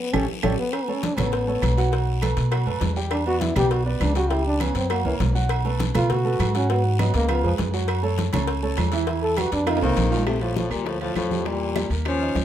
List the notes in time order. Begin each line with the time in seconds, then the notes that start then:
0.00 B3
0.13 A1 C#4 G4 A4 C#5, low bongo, high conga, high timbale, claves
0.29 E3
0.43 A1 G3 G4 A4 C#5, low bongo, high conga, high timbale, long guiro, claves
0.59 B3
0.73 C#4, cowbell, high conga, low agogo, long guiro, claves
0.84 B3, low agogo
0.88 A3 A4 C#5, high conga
0.94 C#4
1.02 D4, cowbell, high conga, low timbale, short guiro
1.17 A1 A3 B3 A4 C#5, cowbell, high conga, low conga, low agogo, short guiro, claves
1.32 cowbell, low agogo, long guiro
1.47 A3 A4 C#5, high conga
1.62 B1, cowbell, high conga, low timbale, low agogo, short guiro, claves
1.77 F#3 F#4 F#5, cowbell, high conga, short guiro
1.92 F#3 F#4 F#5, cowbell, high conga, low agogo, long guiro
2.08 high conga
2.22 A3 A4 B4, cowbell, high conga, low timbale, low agogo, short guiro, claves
2.37 B2, cowbell, high conga, short guiro
2.51 F#3 F#4 F#5, cowbell, high conga, low agogo, long guiro, claves
2.66 F#2 A3 A4 B4, high conga, low agogo
2.81 E2, cowbell, high conga, low timbale, short guiro
2.96 G3 G4 G5, high conga, short guiro
3.11 D4, cowbell, high conga, low agogo, long guiro, claves
3.26 B3 F#4 B4 D5, high conga, low agogo
3.41 E4, cowbell, high conga, low timbale, short guiro
3.56 B1 B3 G4 B4 D5, cowbell, high conga, low conga, low agogo, short guiro, claves
3.71 F#4, cowbell, high conga, low agogo, long guiro
3.86 B3 B4 D5, high conga
4.00 C#2 D4, cowbell, high conga, low timbale, low agogo, short guiro, claves
4.15 G3 F#4 G4 G5, cowbell, high conga, short guiro
4.30 G3 E4 G4 G5, cowbell, high conga, low agogo, long guiro
4.46 D4, high conga
4.60 B3 C#4 B4 C#5, cowbell, high conga, low timbale, low agogo, short guiro, claves
4.75 F#2 C4, cowbell, high conga, short guiro
4.90 F#3 A#3 F#4 F#5, cowbell, high conga, low agogo, long guiro, claves
5.05 C#2 E3 A#3 A#4 C#5, high conga, low agogo
5.20 B1, cowbell, high conga, low timbale, short guiro
5.35 F#3 F#4 F#5, high conga, short guiro
5.49 cowbell, high conga, low agogo, long guiro, claves
5.65 A3 A4 B4, high conga, low agogo
5.79 cowbell, high conga, low timbale, short guiro
5.94 B2 A3 F4 A4 B4, cowbell, high conga, low conga, low agogo, short guiro, claves
6.10 F#4, cowbell, high conga, low conga, low agogo, long guiro
6.25 A3 A4 B4, high conga
6.39 G#2, cowbell, high conga, low timbale, low agogo, short guiro, claves
6.55 F#3 C#4 F#4 F#5, cowbell, high conga, short guiro
6.70 F#3 B3 F#4 F#5, cowbell, high conga, low agogo, long guiro
6.85 D#3, high conga
6.99 F#3 B3 B4 D#5, cowbell, high conga, low timbale, low agogo, short guiro, claves
7.14 C#2 A#3, cowbell, high conga, short guiro
7.29 F3 B3 F4 F5, cowbell, high conga, low agogo, long guiro, claves
7.43 F2 F3 G#3 G#4 B4, high conga, low agogo
7.58 F#2, cowbell, high conga, low timbale, short guiro
7.73 F#3 F#4 F#5, high conga, short guiro
7.88 cowbell, high conga, low agogo, long guiro, claves
8.03 A3 A4 C#5, high conga, low agogo
8.18 cowbell, high conga, low timbale, short guiro
8.33 C#2 A3 A4 C#5, cowbell, high conga, low conga, low agogo, short guiro, claves
8.47 cowbell, high conga, low agogo, long guiro
8.63 A3 A4 C#5, high conga
8.77 E2, cowbell, high conga, low timbale, low agogo, short guiro, claves
8.92 E3 E4 E5, cowbell, high conga, short guiro
9.07 E3 E4 E5, cowbell, high conga, low agogo, long guiro
9.22 A4, high conga
9.37 G3 F#4 G4 B4, cowbell, high conga, low timbale, low agogo, short guiro, claves
9.52 F2 D4, cowbell, high conga, short guiro
9.66 F3 D#4 F4 F5, cowbell, high conga, high timbale, low agogo, long guiro, claves
9.77 high timbale
9.82 C2 D#3 A#3 C4 A4 C5, high conga, low agogo
9.96 A#1, cowbell, high conga, short guiro
10.11 F3 F4 F5, short guiro
10.17 low timbale
10.27 C3 A3, high bongo, high conga, high timbale, long guiro, claves
10.41 A2 F3 F4 F5, high conga, high timbale
10.56 A2 F3, high bongo, high conga, short guiro
10.71 D2 A#2 G3 A#3 A#4, high bongo, high conga, high timbale, short guiro, claves
10.86 A2 F3, high bongo, high conga, high timbale, long guiro
11.01 A2 F3 F4, high conga, high timbale
11.15 E2 A2 F3, high bongo, low bongo, high conga, high timbale, short guiro, claves
11.31 G3 G4, high bongo, high conga, short guiro
11.45 A#2 E3 G3 E4, high bongo, high conga, high timbale, long guiro
11.61 high conga
11.76 G3 G4, high bongo, high conga, high timbale, short guiro, claves
11.90 D#2 A#3 A#4, high bongo, high conga, high timbale, short guiro
12.05 F3 C#4, high bongo, high conga, high timbale, long guiro, claves
12.21 D#4 D#5, high conga
12.35 D2, high bongo, low bongo, high conga, high timbale, low timbale, short guiro